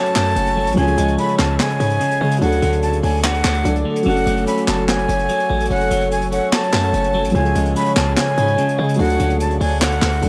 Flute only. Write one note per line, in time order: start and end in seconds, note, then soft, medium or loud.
0.00 0.73 A5 medium
0.77 1.16 G#5 medium
1.18 1.38 B5 medium
1.39 1.58 A5 medium
1.60 2.38 G#5 medium
2.42 2.80 F#5 loud
2.83 3.02 A5 medium
3.03 3.23 G#5 medium
3.24 3.76 F#5 medium
4.06 4.45 F#5 loud
4.47 4.67 B5 medium
4.68 4.87 A5 medium
4.88 5.66 G#5 medium
5.70 6.09 F#5 loud
6.12 6.31 G#5 medium
6.32 6.52 F#5 medium
6.53 7.31 A5 medium
7.35 7.73 G#5 medium
7.76 7.95 B5 medium
7.96 8.16 A5 medium
8.17 8.95 G#5 loud
8.99 9.38 F#5 loud
9.40 9.60 A5 medium
9.61 9.80 G#5 medium
9.81 10.29 F#5 medium